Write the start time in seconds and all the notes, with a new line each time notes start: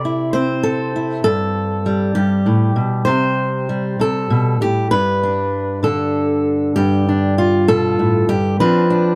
Already playing: C3 D5
0.05 E4
0.33 C4 C5
0.63 A4
0.96 E4
1.24 G2 A4
1.86 G3
2.15 G2 G4
2.46 A2
2.76 B2
3.05 C3 C5
3.69 G3
4.00 C3 A4
4.30 B2
4.61 A2 G4
4.91 G2 B4
5.23 D4
5.83 D3 A4
6.76 G2 G4
7.09 D4
7.38 F4
7.68 B2 A4
7.99 A2
8.29 G2 G4
8.60 F3 C4 D4 B4
8.90 D4